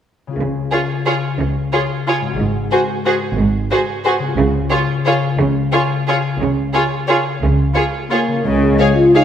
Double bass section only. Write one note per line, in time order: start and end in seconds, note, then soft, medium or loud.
0.38 0.64 C#2 soft
1.39 1.65 C#2 soft
2.39 2.64 G#1 soft
3.37 3.63 G#1 soft
4.37 4.63 C#2 soft
5.38 5.65 C#2 soft
6.39 6.66 C#2 soft
7.41 7.68 C#2 soft
8.44 8.73 C#2 soft